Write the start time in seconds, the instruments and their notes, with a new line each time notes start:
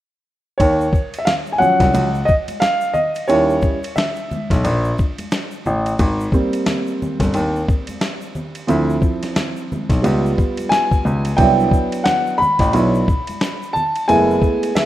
0.58 grand piano D#2, upright piano C#5, kick, ride, shaker
0.81 shaker
0.93 kick, shaker
1.14 ride, shaker
1.19 upright piano E5
1.25 upright piano F5, snare, hi-hat pedal, ride, low conga, shaker
1.46 shaker
1.52 upright piano G#5
1.58 upright piano F3 F#3 C#4 F#5, high conga, low conga, shaker
1.80 grand piano C2, kick, snare, ride, shaker
1.94 grand piano C#2, ride, shaker
2.15 shaker
2.25 upright piano D#5, kick, shaker
2.48 ride, high conga, shaker
2.60 upright piano F5, snare, hi-hat pedal, ride, shaker
2.81 shaker
2.94 upright piano D#5, low conga, shaker
3.15 ride, shaker
3.28 grand piano D#2, upright piano G3 C#4 E4 C#5, ride, shaker
3.50 shaker
3.62 kick, shaker
3.83 ride, shaker
3.96 upright piano E5, snare, hi-hat pedal, ride, low conga, shaker
4.16 shaker
4.31 high conga, low conga, shaker
4.50 grand piano B1, kick, snare, ride, shaker
4.64 grand piano A#1, ride, shaker
4.85 shaker
4.98 kick, shaker
5.18 ride, high conga, shaker
5.32 snare, hi-hat pedal, ride, shaker
5.51 shaker
5.66 grand piano A1, low conga, shaker
5.86 ride, shaker
5.99 grand piano G#1, kick, ride, shaker
6.20 shaker
6.32 upright piano G3 A#3 C4, kick, shaker
6.53 ride, shaker
6.66 snare, hi-hat pedal, ride, low conga, shaker
6.87 shaker
7.02 high conga, low conga, shaker
7.20 grand piano G1, kick, snare, ride, shaker
7.34 grand piano D#2, ride, shaker
7.56 shaker
7.68 kick, shaker
7.87 ride, high conga, shaker
8.01 snare, hi-hat pedal, ride, shaker
8.21 shaker
8.35 low conga, shaker
8.55 ride, shaker
8.67 grand piano D2, upright piano F3 C4 E4, ride, shaker
8.90 shaker
9.02 kick, shaker
9.23 snare, ride, shaker
9.36 snare, hi-hat pedal, ride, low conga, shaker
9.56 shaker
9.72 high conga, low conga, shaker
9.90 grand piano B1, kick, snare, ride, shaker
10.02 grand piano C#2, upright piano G3 B3 F4, ride, shaker
10.26 shaker
10.38 kick, shaker
10.57 ride, high conga, shaker
10.69 upright piano G#5, snare, hi-hat pedal, ride, shaker
10.91 kick, shaker
11.05 grand piano C#2, low conga, shaker
11.25 ride, shaker
11.37 grand piano C2, upright piano F#3 B3 D4 E4 G5, kick, ride, shaker
11.60 shaker
11.71 kick, shaker
11.92 ride, shaker
12.04 upright piano F#5, snare, hi-hat pedal, ride, low conga, shaker
12.27 shaker
12.38 upright piano B5
12.42 high conga, low conga, shaker
12.59 grand piano A1, kick, snare, ride, shaker
12.73 grand piano B1, upright piano F#3 B3 D4 E4, ride, shaker
12.95 shaker
13.08 kick, shaker
13.27 ride, high conga, shaker
13.41 snare, hi-hat pedal, ride, shaker
13.62 shaker
13.73 upright piano A5, low conga, shaker
13.96 ride, shaker
14.08 grand piano F#1, upright piano G#3 A3 B3 E4 G#5, ride, shaker
14.30 shaker
14.42 kick, shaker
14.63 ride, shaker
14.75 upright piano E5, snare, hi-hat pedal, ride, low conga, shaker